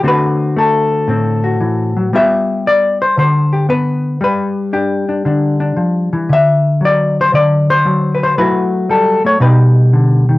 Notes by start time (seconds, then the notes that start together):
0.03 D3 A3 C4 F#4
0.08 B4
0.57 A3 A4
1.08 A2 C4
1.44 F#4
1.60 E3
1.97 F#3
2.13 G3 B3 F4 G4 E5
2.67 D5
3.02 C5
3.17 D3 C5
3.53 G4
3.69 B3 B4
4.21 G3 B4
4.73 D4 G4
5.09 D4
5.25 D3 D4
5.60 D4
5.77 F3
6.13 E3
6.29 D3 E5
6.81 F#3
6.85 D5
7.21 C5
7.33 D3 D5
7.70 C5
7.85 F#3
8.15 B4
8.23 C5
8.38 F#3 A3 E4 F#4 B4
8.89 G3 A4
9.25 A3 C#5
9.40 B2 G3 D#4 G4 B4
9.93 D3
10.29 D#3